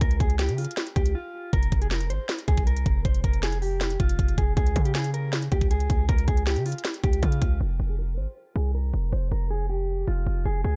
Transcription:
0.01 C#2 A#4, kick, closed hi-hat
0.11 closed hi-hat
0.20 C#2 G#4, kick, closed hi-hat
0.30 closed hi-hat
0.39 G4, snare, closed hi-hat
0.49 C#3, closed hi-hat
0.58 F4, closed hi-hat, open hi-hat
0.65 closed hi-hat
0.71 closed hi-hat
0.77 snare, closed hi-hat
0.87 closed hi-hat
0.96 C#2 G4, kick, closed hi-hat
1.06 closed hi-hat
1.15 F4
1.53 F1 A#4, kick, closed hi-hat
1.63 closed hi-hat
1.72 F1, kick, closed hi-hat
1.82 G#4, closed hi-hat
1.91 A#4, snare, closed hi-hat
2.01 closed hi-hat
2.10 G#1 C5, closed hi-hat
2.29 snare, closed hi-hat
2.38 closed hi-hat
2.48 C2 G#4, kick, closed hi-hat
2.57 kick, closed hi-hat
2.67 A#4, closed hi-hat
2.77 closed hi-hat
2.86 F1, kick, closed hi-hat
3.05 F1 C5, kick, closed hi-hat
3.15 closed hi-hat
3.24 F1 A#4, kick, closed hi-hat
3.33 closed hi-hat
3.43 G#4, snare, closed hi-hat
3.52 closed hi-hat
3.62 G4, open hi-hat
3.81 snare, closed hi-hat
3.90 closed hi-hat
4.00 F1 F4, kick, closed hi-hat
4.09 closed hi-hat
4.19 F1, kick, closed hi-hat
4.28 closed hi-hat
4.38 F1 G#4, kick, closed hi-hat
4.57 C#2 G#4, kick, closed hi-hat
4.66 closed hi-hat
4.76 C#3, kick, closed hi-hat
4.85 G4, closed hi-hat
4.95 G#4, snare, closed hi-hat
5.04 closed hi-hat
5.14 A#4, closed hi-hat
5.33 snare, closed hi-hat
5.42 closed hi-hat
5.52 C#2 G4, kick, closed hi-hat
5.61 kick, closed hi-hat
5.71 G#4, closed hi-hat
5.80 closed hi-hat
5.90 C#2, kick, closed hi-hat
6.09 C#2 A#4, kick, closed hi-hat
6.18 closed hi-hat
6.28 C#2 G#4, kick, closed hi-hat
6.37 closed hi-hat
6.47 G4, snare, closed hi-hat
6.56 C#3, closed hi-hat
6.66 F4, closed hi-hat, open hi-hat
6.72 closed hi-hat
6.78 closed hi-hat
6.85 snare, closed hi-hat
6.94 closed hi-hat
7.04 C#2 G4, kick, closed hi-hat
7.13 closed hi-hat
7.23 C#3 F4, kick, closed hi-hat
7.32 closed hi-hat
7.42 C#2, kick, closed hi-hat
7.61 F1 A#4
7.80 F1
7.89 G#4
7.99 A#4
8.18 G#1 C5
8.56 C2 G#4
8.75 A#4
8.94 F1
9.13 F1 C5
9.32 F1 A#4
9.50 G#4
9.70 G4
10.07 F1 F4
10.26 F1
10.45 F1 G#4
10.64 C#2 G#4

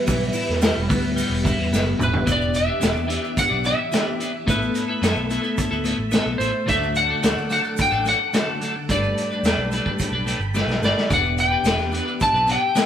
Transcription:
Already playing: G3 B3 E4 B4 E5
0.07 B1 E3, kick, open hi-hat, shaker
0.33 E4, open hi-hat, shaker
0.49 E2, snare
0.62 G3, snare, open hi-hat, shaker
0.77 E1
0.89 D2 B3, kick, open hi-hat, shaker
1.16 G3, open hi-hat, shaker
1.29 E1
1.44 E4, kick, open hi-hat, shaker
1.58 E2
1.71 F#1 B3, snare, shaker
1.98 E1 E3, mid tom, shaker
2.03 B4
2.13 floor tom
2.26 E1 E3 B3 D4 G4 E5 D6, kick, closed hi-hat, shaker
2.32 D5
2.41 shaker
2.54 E5, closed hi-hat, shaker
2.66 B3 D4 G4
2.80 E1 E3 B3 D4 G4, snare, closed hi-hat, shaker
2.95 E2, shaker
3.07 E3 B3 D4 G4, closed hi-hat, shaker
3.21 B3 D4 G4, shaker
3.37 F#5, kick, closed hi-hat, shaker
3.49 B1 B3 D4 G4
3.64 E3 B3 D4 G4 E5, closed hi-hat, shaker
3.79 muted clean electric guitar stroke
3.92 E3 B3 D4 G4, snare, closed hi-hat, shaker
4.19 E3 B3 D4 G4, closed hi-hat, shaker
4.33 muted clean electric guitar stroke
4.46 A1 A3 B3 E4 A4 B4 B5, kick, closed hi-hat, shaker
4.62 shaker
4.75 closed hi-hat, shaker
4.88 B3 E4 A4
5.02 F#2 A3 B3 E4 A4, snare, closed hi-hat, shaker
5.16 B1, shaker
5.29 A3 B3 E4 A4, closed hi-hat, shaker
5.42 B3 E4 A4, shaker
5.57 kick, closed hi-hat, shaker
5.71 D2 B3 E4 A4, shaker
5.84 A3 B3 E4 A4, closed hi-hat, shaker
5.98 A1, muted clean electric guitar stroke
6.11 A3 B3 E4 A4, snare, closed hi-hat, shaker
6.26 B1
6.38 A1 A3 B3 E4 A4 C5, closed hi-hat, shaker
6.52 muted clean electric guitar stroke
6.66 D2 D3 F#3 A3 D4 A4 E5 F#5 D6, kick, closed hi-hat, shaker
6.83 shaker
6.95 F#5, closed hi-hat, shaker
7.09 A3 D4 A4
7.22 D2 D3 F#3 A3 D4 A4, snare, closed hi-hat, shaker
7.37 D3, shaker
7.49 F#3 A3 D4 A4 F#5, closed hi-hat, shaker
7.63 A3 D4 A4, shaker
7.77 kick, closed hi-hat, shaker
7.81 G5
7.91 A1 A3 D4 A4, shaker
8.05 F#3 A3 D4 A4 F#5, closed hi-hat, shaker
8.20 muted clean electric guitar stroke
8.33 D3 F#3 A3 D4 A4, snare, closed hi-hat, shaker
8.61 F#3 A3 D4 A4, closed hi-hat, shaker
8.76 muted clean electric guitar stroke
8.88 G1 G3 A3 D4 G4 B4 D5 G5 B5, kick, closed hi-hat, shaker
9.03 shaker
9.18 closed hi-hat, shaker
9.31 D4 G4 B4, shaker
9.43 E2 G3 A3 D4 G4, snare, closed hi-hat, shaker
9.48 B4
9.57 B1
9.71 A3 D4 G4 B4, closed hi-hat, shaker
9.85 D4 G4 B4, kick, shaker
9.99 kick, closed hi-hat, shaker
10.11 B1 D4 G4 B4
10.26 A3 D4 G4 B4, closed hi-hat, shaker
10.39 G1, muted clean electric guitar stroke, shaker
10.54 G3 A3 D4 G4 B4, snare, shaker
10.67 B1, snare, shaker
10.81 G1 A3 D4 G4, snare, shaker
10.85 B4 D5
10.96 muted clean electric guitar stroke, snare, shaker
11.09 E1 E3 B3 D4 G4 B4 E5 D6, kick, closed hi-hat, shaker
11.13 F#5
11.24 shaker
11.38 G5, closed hi-hat, shaker
11.51 D4 G4 B4
11.63 E1 E3 B3 D4 G4, snare, closed hi-hat, shaker
11.67 B4
11.76 E2, shaker
11.80 snare
11.92 B3 D4 G4 B4, closed hi-hat, shaker
11.98 F#5
12.05 D4 G4 B4, shaker
12.20 A5, kick, closed hi-hat, shaker
12.33 B1 D4 G4 B4, shaker
12.47 B3 D4 G4 B4, closed hi-hat, shaker
12.52 G5
12.63 muted clean electric guitar stroke
12.75 E3 B3 D4 G4 B4, snare, closed hi-hat, shaker

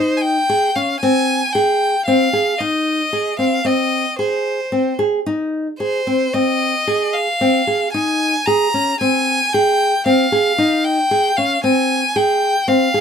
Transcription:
Already playing: D#4 C5
0.17 G#5
0.21 G5
0.49 G#4
0.75 C#4 F5
1.00 C4 G#5
1.53 G#4 G5
2.06 C4 F5
2.33 G#4
2.58 D#4 D#5
3.13 G#4
3.39 C4 F5
3.65 C4 D#5
4.19 G#4 C5
4.72 C4
4.99 G#4
5.26 D#4
5.79 G#4 C5
6.07 C4
6.33 C4 D#5
6.87 G#4
7.13 F5
7.41 C4
7.67 G#4
7.92 D#4 G#5
8.46 G#4 A#5
8.74 C#4
9.00 C4 G#5
9.53 G#4 G5
10.06 C4 F5
10.32 G#4
10.58 D#4
10.84 G5
11.11 G#4
11.37 C#4 F5
11.64 C4 G#5
12.16 G#4 G5
12.68 C4 F5
12.94 G#4

